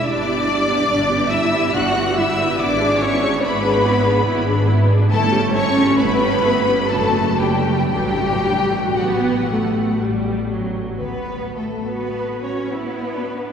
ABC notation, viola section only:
X:1
M:3/4
L:1/16
Q:1/4=69
K:D
V:1 name="Viola section"
[G,D] [B,G] [G,D] [B,G] [G,D] [B,G] [G,D] [B,G] [G,D] [B,G] [G,D] [B,G] | [B,E] [D^G] [B,E] [DG] [B,E] [DG] [B,E] [DG] [B,E] [DG] [B,E] [DG] | [A,E] [CG] [A,E] [CG] [A,E] [CG] [A,E] [CG] [F,D] [A,F] [F,D] [A,F] | [F,D] [A,F] [F,D] [A,F] B,2 A,2 G,2 F,2 |
z4 F4 E2 D2 |]